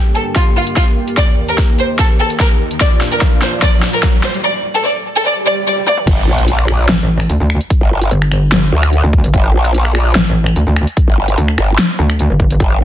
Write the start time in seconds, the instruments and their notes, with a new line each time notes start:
Already playing: analog synth pad G2 D3 A#3 G4, riser
0.15 violin section A4, closed hi-hat
0.36 violin section F4, kick, snare, closed hi-hat
0.56 violin section F4
0.67 closed hi-hat
0.76 violin section F4, kick, snare, closed hi-hat
1.08 closed hi-hat
1.17 analog synth pad D#2 D#3, violin section D5, kick, snare, closed hi-hat
1.48 violin section A#4, closed hi-hat
1.58 kick, snare, closed hi-hat
1.78 violin section C5, closed hi-hat
1.99 violin section A4, kick, snare, closed hi-hat
2.19 violin section A4
2.30 closed hi-hat
2.40 violin section A#4, kick, snare, closed hi-hat
2.71 closed hi-hat
2.80 analog synth pad A#2 D4 F4, violin section D5, kick, snare, closed hi-hat
3.01 snare
3.12 violin section A#4, closed hi-hat
3.21 kick, snare, closed hi-hat
3.42 violin section C5, snare, closed hi-hat
3.62 violin section D5, kick, snare, closed hi-hat
3.83 snare
3.93 violin section A#4, closed hi-hat
4.03 kick, snare, closed hi-hat
4.23 violin section C5, snare
4.34 closed hi-hat
4.44 violin section D5
4.75 violin section A4
4.85 violin section D5
5.16 violin section A4
5.25 violin section D5, swell
5.46 violin section D5
5.66 violin section D5
5.87 violin section D5, high tom
5.97 mid tom
6.07 wobble bass G1, kick, closed hi-hat, crash, impact
6.27 wobble bass A#1
6.38 closed hi-hat
6.48 closed hi-hat
6.59 finger snap
6.68 finger snap, closed hi-hat
6.89 wobble bass A1, snare, closed hi-hat
7.20 finger snap, closed hi-hat
7.30 wobble bass D2, closed hi-hat
7.40 wobble bass D2
7.50 finger snap
7.61 closed hi-hat
7.70 kick, closed hi-hat
7.81 wobble bass G1
8.02 closed hi-hat
8.11 wobble bass G1, closed hi-hat
8.22 finger snap
8.32 finger snap, closed hi-hat
8.52 snare, closed hi-hat
8.72 wobble bass D2
8.83 finger snap, closed hi-hat
8.93 closed hi-hat
9.04 wobble bass D2
9.13 kick
9.24 wobble bass G1, closed hi-hat
9.34 wobble bass G1, kick, closed hi-hat
9.54 wobble bass A#1
9.65 closed hi-hat
9.74 closed hi-hat
9.85 finger snap
9.95 finger snap, closed hi-hat
10.15 wobble bass A1, snare, closed hi-hat
10.46 finger snap, closed hi-hat
10.56 wobble bass D2, closed hi-hat
10.67 wobble bass D2
10.76 finger snap
10.87 closed hi-hat
10.97 kick, closed hi-hat
11.08 wobble bass G1
11.28 closed hi-hat
11.38 wobble bass D2, closed hi-hat
11.48 finger snap
11.58 wobble bass G1, finger snap, closed hi-hat
11.78 snare, closed hi-hat
11.99 wobble bass D2
12.10 finger snap, closed hi-hat
12.19 closed hi-hat
12.30 wobble bass G1
12.40 kick
12.50 closed hi-hat
12.60 wobble bass G1, kick, closed hi-hat
12.81 wobble bass A#1